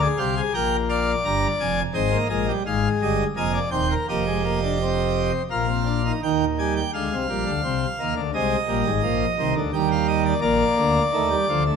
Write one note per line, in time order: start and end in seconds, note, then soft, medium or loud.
0.02 0.18 G#4 medium
0.18 0.41 C2 medium
0.18 0.41 C3 medium
0.18 0.35 G4 medium
0.18 0.40 F5 medium
0.37 0.52 G#4 medium
0.54 1.15 A#1 medium
0.54 1.15 A#2 medium
0.54 0.76 A#4 medium
0.54 0.76 G5 loud
0.89 1.80 D5 medium
0.89 1.11 F5 medium
1.25 1.47 G1 medium
1.25 1.47 G2 medium
1.25 1.47 A#5 medium
1.60 1.82 F1 medium
1.60 1.82 F2 medium
1.60 1.82 G#5 medium
1.94 2.16 G#1 medium
1.94 2.17 G#2 medium
1.94 2.10 C4 medium
1.94 2.17 C5 medium
1.94 2.27 D#5 medium
2.11 2.27 A#3 medium
2.29 2.52 A#1 medium
2.29 2.52 A#2 medium
2.29 2.45 G#3 medium
2.29 2.51 D#5 medium
2.47 2.62 G3 medium
2.66 2.88 G#1 medium
2.66 2.88 G#2 medium
2.66 3.27 G#3 medium
2.66 2.88 F5 medium
3.02 3.24 G1 medium
3.02 3.24 G2 medium
3.02 3.24 D#5 medium
3.36 3.59 F1 medium
3.36 3.58 F2 medium
3.36 3.59 A#3 medium
3.36 3.52 D#5 medium
3.36 3.59 G#5 medium
3.54 3.69 D5 medium
3.71 3.94 D#1 medium
3.71 3.94 D#2 medium
3.71 3.94 C4 medium
3.71 3.87 C5 medium
3.71 3.93 G5 medium
3.91 4.06 A#4 medium
4.09 5.32 F1 medium
4.09 5.31 F2 medium
4.09 4.24 A#3 medium
4.09 5.31 G4 medium
4.09 5.32 D#5 medium
4.27 4.42 G#3 medium
4.44 4.59 A#3 medium
4.63 4.78 D4 medium
4.82 5.42 C4 medium
5.51 6.12 A#1 medium
5.51 6.12 A#2 medium
5.51 5.66 A#3 medium
5.51 6.12 F4 medium
5.51 6.12 F5 medium
5.69 5.84 C4 soft
5.86 6.01 D4 medium
6.06 6.20 D#4 medium
6.23 6.83 D#2 medium
6.23 6.45 D#3 medium
6.23 6.45 G5 medium
6.58 6.80 G3 medium
6.58 6.73 G#5 medium
6.76 6.91 G5 medium
6.94 7.09 D2 medium
6.94 7.09 D3 medium
6.94 7.15 G#3 medium
6.94 8.14 F5 medium
7.12 7.26 C2 medium
7.12 7.27 C3 medium
7.29 7.44 A#1 medium
7.29 7.44 A#2 medium
7.29 7.51 G3 medium
7.46 7.61 D2 medium
7.46 7.61 D3 medium
7.64 7.85 C2 medium
7.64 7.85 C3 medium
7.64 7.85 C4 medium
8.00 8.14 D#2 medium
8.00 8.14 D#3 medium
8.00 8.21 A#3 medium
8.16 8.31 D2 medium
8.16 8.31 D3 medium
8.34 8.56 C2 medium
8.34 8.56 C3 medium
8.34 8.56 G#3 medium
8.34 9.54 D#5 medium
8.68 8.83 A#1 medium
8.68 8.83 A#2 medium
8.68 8.90 G3 medium
8.85 9.01 G#1 medium
8.85 9.01 G#2 medium
9.03 9.25 A#1 medium
9.03 9.25 A#2 medium
9.03 9.25 F3 medium
9.38 9.53 C2 medium
9.38 9.54 C3 medium
9.38 9.60 D#3 medium
9.55 9.71 D2 medium
9.55 9.71 D3 medium
9.73 10.33 D#2 medium
9.73 10.34 D#3 medium
9.73 10.34 G3 medium
9.73 9.88 G5 medium
9.92 10.06 F5 medium
10.08 10.23 D#5 medium
10.26 10.40 D5 medium
10.41 10.64 A#1 loud
10.41 10.64 A#2 loud
10.41 11.02 A#3 medium
10.41 11.63 D5 medium
10.77 10.99 D2 loud
10.77 10.99 D3 medium
11.13 11.35 D#2 medium
11.13 11.35 D#3 medium
11.13 11.29 A3 medium
11.30 11.45 G3 medium
11.49 11.71 D2 medium
11.49 11.71 D3 medium
11.49 11.64 F3 medium
11.66 11.76 A3 medium